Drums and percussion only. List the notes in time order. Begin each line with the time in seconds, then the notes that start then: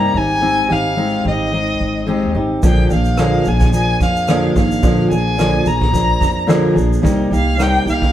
2.63 kick, shaker
2.90 shaker
3.05 shaker
3.17 cross-stick, shaker
3.45 shaker
3.60 kick, shaker
3.73 shaker
4.00 kick, shaker
4.16 shaker
4.28 cross-stick, shaker
4.56 kick, shaker
4.71 shaker
4.83 kick, shaker
5.11 shaker
5.39 cross-stick, shaker
5.66 shaker
5.81 kick
5.94 kick, shaker
6.21 kick, shaker
6.49 cross-stick, shaker
6.78 shaker
6.93 shaker
7.05 kick, shaker
7.33 shaker
7.60 cross-stick, shaker
7.88 shaker
8.02 kick, cross-stick